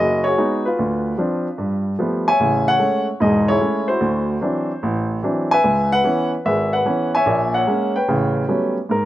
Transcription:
Already playing: F#1 D#5
0.00 F#4 G#4
0.24 F#4 G#4 C#5
0.38 G#3 B3 D#4
0.65 F4 B4
0.79 D2
1.18 F3 C4 D4
1.58 G2
1.99 F3 G3 A3 B3
2.28 C#5 E5 G#5
2.40 A1 C#3
2.68 C#5 F#5
2.79 G#3 A3 C#4
3.20 E1 G#2 G#4 D#5
3.48 E4 G#4 C#5
3.60 G#3 A3 C#4
3.88 E4 F#4 C5
4.01 D2
4.41 E3 F#3 C4 D4
4.83 A1
5.23 E3 F#3 C4 D4
5.51 B4 E5 G#5
5.64 C#2
5.92 B4 F#5
6.04 E3 B3 C#4
6.45 G#1 G#4 B4 E5
6.73 B4 F#5
6.85 E3 B3 C#4
7.15 C#5 E5 G#5
7.26 A#1 A#2
7.54 C#5 F#5
7.67 G#3 A#3 C#4
7.96 B4 C#5 G5
8.08 A1 C#3
8.48 F#3 G3 A3 B3 C#4
8.89 G#2 A#4

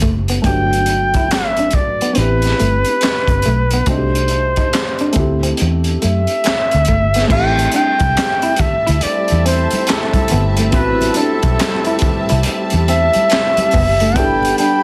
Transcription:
Already playing: A3 C4 E4 G4
0.02 F#1 A3, kick
0.28 B3, closed hi-hat
0.42 G1 A3 B3 D4 G5, kick, closed hi-hat
0.47 F#3 G4
0.73 closed hi-hat
0.86 closed hi-hat
0.90 muted clean electric guitar stroke
1.14 E4, kick, closed hi-hat
1.31 E5, snare, clap, closed hi-hat
1.57 D4, closed hi-hat
1.71 kick, closed hi-hat
1.75 D5, muted clean electric guitar stroke
2.01 B3, closed hi-hat
2.13 B3 C4 E4, closed hi-hat
2.17 A1 G4 B4
2.42 snare, closed hi-hat
2.59 G1 A3, closed hi-hat
2.85 closed hi-hat
3.01 muted clean electric guitar stroke, snare, clap, closed hi-hat
3.28 G1, kick, closed hi-hat
3.42 A3, closed hi-hat
3.46 B1
3.71 B3, closed hi-hat
3.86 C2 A3 C4 D4 D#4 F#4 C5, kick, closed hi-hat
3.95 G4
4.15 closed hi-hat
4.28 muted clean electric guitar stroke, closed hi-hat
4.56 D#4, kick, closed hi-hat
4.73 snare, clap, closed hi-hat
4.99 D4, closed hi-hat
5.12 A3 C4, muted clean electric guitar stroke, kick, closed hi-hat
5.17 D2 E4 G4
5.43 C4, closed hi-hat
5.57 closed hi-hat
5.62 E2
5.84 closed hi-hat
6.02 F#2 A3 E5, closed hi-hat
6.27 closed hi-hat
6.44 muted clean electric guitar stroke, snare, clap, closed hi-hat
6.71 D2, closed hi-hat
6.85 A3, kick, closed hi-hat
6.90 G1
7.14 B3, snare, closed hi-hat
7.27 G3 A3 C4 E4 E5 A5, kick, crash
7.31 A1 G4 G5
7.58 closed hi-hat, muted conga
7.72 D4, closed hi-hat
7.76 G5
8.00 C2, kick, closed hi-hat, high conga
8.17 snare, clap, closed hi-hat, high conga
8.42 E4, closed hi-hat
8.56 muted clean electric guitar stroke, kick, closed hi-hat, low conga
8.60 E5, muted fingered electric bass stroke
8.86 D2 E4, closed hi-hat
9.01 A3 C4 E4 D5, closed hi-hat, muted conga
9.28 E2, closed hi-hat
9.45 C4 C5, closed hi-hat
9.71 closed hi-hat, high conga
9.87 A4, muted clean electric guitar stroke, snare, clap, closed hi-hat, muted conga
10.13 kick, closed hi-hat, muted conga, high conga
10.28 B3, closed hi-hat, low conga
10.33 G1
10.57 A3, closed hi-hat
10.71 A1 B3 C4 E4 B4, kick, closed hi-hat
10.77 F#4
11.01 closed hi-hat, muted conga
11.14 D4 A4, closed hi-hat
11.43 B1, kick, closed hi-hat, high conga
11.59 snare, clap, closed hi-hat, muted conga, high conga
11.85 E4, closed hi-hat, muted conga
11.99 kick, closed hi-hat, low conga
12.03 muted clean electric guitar stroke, muted fingered electric bass stroke
12.29 C2 E4, closed hi-hat
12.43 closed hi-hat
12.70 E2, closed hi-hat, muted conga
12.88 C4 E5, closed hi-hat
13.13 closed hi-hat, high conga
13.30 muted clean electric guitar stroke, snare, clap, closed hi-hat
13.57 closed hi-hat, muted conga, high conga
13.71 B3, kick, open hi-hat, low conga
13.76 F#1
14.00 A3, closed hi-hat
14.14 G1 B3 D4 E4 G4 G5 B5, kick, closed hi-hat, muted conga
14.19 A4
14.43 closed hi-hat, muted conga
14.58 D4 G5, closed hi-hat

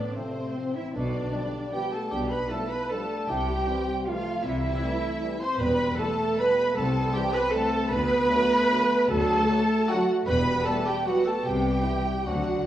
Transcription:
Already playing: D3 B3 D4 D5
0.16 C3 F3 A3 C4 C5
0.57 F3 C4
0.76 E3 E4 E5
0.94 B1 B2 D3 B3 D4 D5
1.33 F3 G3
1.73 F3 G3 B3 G4 G5
1.92 A3 A4 A5
2.11 B1 B2 G3 D4 G4 G5
2.30 B3 B4 B5
2.49 F3 G3 A3 E4 A4 A5
2.70 B3 B4 B5
2.90 F3 G3 A3 D4 A4 A5
3.28 C2 C3 G3 E4 G4 G5
3.68 E3 G3 C4
4.06 E3 F3 G3 A3 F4 F5
4.44 C2 C3 E3 G3 E4 E5
4.82 E3 G3 A3
5.23 E3 G3
5.40 C4 C5 C6
5.59 E1 E2 G3 B3 B4 B5
5.98 E3 G3 A3 A4 A5
6.37 E3 G3 B3 B4 B5
6.75 C2 A3 C4 A4 A5
7.13 E3 G3 G4 G5
7.33 B3 B4 B5
7.53 E3 G3 A3 A4 A5
7.91 D2 B3 B4 B5
8.30 D3 F#3 A3
8.71 D3 F#3
9.09 D2 F#3 A3 A4 A5
9.48 D3 F#3 A3
9.88 D3 F#3 F#4 F#5
10.26 E1 E2 G3 B3 B4 B5
10.65 E3 G3 A3 A4 A5
10.86 G3 G4 G5
11.07 E3 F#3 G3 B3 F#4 F#5
11.25 A3 A4 A5
11.39 A4
11.45 C2 C3 G3 G4 G5
11.84 E3 G3 E4
12.26 D2 D3 F#3 C4 D4 F#4 F#5

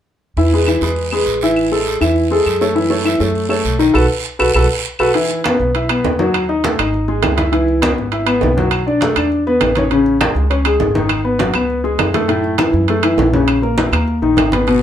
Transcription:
0.37 E2 E3 E4 E5, long guiro
0.53 G#3 G#4 B4
0.67 E3 E4 E5, short guiro, claves
0.81 E2 G#3 G#4 B4, short guiro
0.96 long guiro
1.11 G#3 G#4 B4, claves
1.26 A1, short guiro
1.41 E3 E4 E5, short guiro
1.56 long guiro, claves
1.72 G#3 G#4 A4
1.86 short guiro
2.01 E2 E3 E4 E5, short guiro, claves
2.16 long guiro
2.31 G#3 G#4 A4
2.46 F#2, short guiro, claves
2.61 A3 A4 C#5, short guiro
2.75 E3 E4 E5, long guiro
2.90 A3 A4 C#5
3.05 E3 E4 E5, short guiro, claves
3.20 F#2 A3 A4 C#5, short guiro
3.35 long guiro
3.49 A3 A4 C#5, claves
3.65 B1, short guiro
3.79 D#3 D#4 D#5, short guiro
3.94 B1 F#4 A4 B4, long guiro, claves
4.39 B1 F#4 A4 B4, long guiro, claves
4.54 B1 F#4 A4 B4, long guiro, claves
4.99 B1 F#4 A4 B4, long guiro, claves
5.14 E3 E4, high conga, high timbale
5.30 high conga
5.44 B3 B4, high conga, high timbale, low timbale, claves
5.60 B1, high conga
5.75 E4 E5, high conga, high timbale
5.89 B3 B4, high conga, high timbale, claves
6.04 D#2, high conga, low timbale
6.19 F#3 F#4, high conga
6.34 high conga, high timbale, claves
6.49 D#4 D#5, high conga
6.64 A3 A4, high conga, high timbale, low timbale
6.79 G#1 D#4 D#5, high conga, high timbale, claves
6.94 high conga
7.08 G#3 G#4, high conga
7.23 C#2, high conga, high timbale, low timbale, claves
7.36 E4 E5, high conga, high timbale
7.52 E3 E4, high conga, high timbale
7.68 high conga
7.81 B3 B4, high conga, high timbale, low timbale, claves
7.98 G#1, high conga
8.12 E4 E5, high conga, high timbale
8.26 B3 B4, high conga, high timbale, claves
8.41 B1, high conga, low timbale
8.57 F#3 F#4, high conga
8.71 high conga, high timbale, claves
8.87 D4 D5, high conga
9.01 A3 A4, high conga, high timbale, low timbale
9.16 E2 D4 D5, high conga, high timbale, claves
9.32 high conga
9.47 B3 B4, high conga
9.61 A1, high conga, high timbale, low timbale, claves
9.75 C#4 C#5, high conga, high timbale
9.91 C#3 C#4, high conga, high timbale
10.06 high conga
10.21 G#3 G#4, high conga, high timbale, low timbale, claves
10.35 C#2, high conga
10.50 C#4 C#5, high conga, high timbale
10.65 G#3 G#4, high conga, high timbale, claves
10.80 G#1, high conga, low timbale
10.95 D#3 D#4, high conga
11.09 high conga, high timbale, claves
11.24 B3 B4, high conga
11.39 F#3 F#4, high conga, high timbale, low timbale
11.54 C#2 B3 B4, high conga, high timbale, claves
11.70 high conga
11.84 G#3 G#4, high conga
11.98 F#2, high conga, high timbale, low timbale, claves
12.14 A3 A4, high conga, high timbale
12.28 A2 A3, high conga, high timbale
12.44 high conga
12.58 E3 E4, high conga, high timbale, low timbale, claves
12.73 F#2, high conga
12.88 A3 A4, high conga, high timbale
13.03 E3 E4, high conga, high timbale, claves
13.17 A#1, high conga, low timbale
13.33 C#3 C#4, high conga
13.48 high conga, high timbale, claves
13.62 A#3 A#4, high conga
13.78 E3 E4, high conga, high timbale, low timbale
13.92 D#2 A#3 A#4, high conga, high timbale, claves
14.08 high conga
14.22 A#1 D#3 D#4, high conga
14.36 G#1, high conga, high timbale, low timbale, claves
14.52 B3 B4, high conga, high timbale
14.67 B2 B3, high conga, high timbale, long guiro

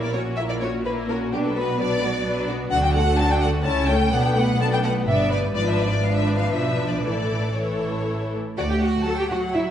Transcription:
Already playing: A#1 A#2 A#3 E4 A#4
0.02 D5
0.13 C#4 F#4 C#5
0.37 A#3 E4 A#4 E5
0.49 D5
0.62 C#4 F#4 C#5
0.85 A#3 E4 A#4 B4
1.09 C#4 F#4 A#4
1.32 B1 B2 F#3 D4 G4 B4
1.44 A4
1.55 B3 F#4 B4
1.80 F#3 D4 B4 D5
2.03 B3 F#4
2.26 F#3 D4 B4
2.49 B3 F#4
2.71 D2 D3 F#3 D4 F#4 F#5
2.84 G5
2.94 A3 F#4 A4 F#5
3.17 F#3 D4 F#4 A5
3.31 G5
3.40 A3 F#4 A4 F#5
3.64 C#2 C#3 C#4 E4 C#5 A5
3.88 A3 C#4 A4 G5
4.12 B1 B2 B3 D4 A4 F#5
4.25 G5
4.37 A3 B3 B4 F#5
4.60 B3 D4 A4 A5
4.73 G5
4.84 A3 B3 B4 F#5
5.07 G1 G2 B3 D4 D5 E5
5.31 G3 B3 B4 D5
5.55 G#1 G#2 F3 D4 B4 D5
5.69 E5
5.80 D5
6.04 F3 D4 B4 F5
6.16 E5
6.28 D5
6.36 F5
6.52 B1 B2 E5
6.88 D5
7.04 A1 A2 E3 E4 A4 D5
7.56 E3 E4 A4 C#5
8.57 D2 A3 F#4 D5 F#5
8.70 G4 G5
8.81 F#4 F#5
9.04 F#3 A4 A5
9.17 G4 G5
9.29 F#4 F#5
9.53 E4 E5

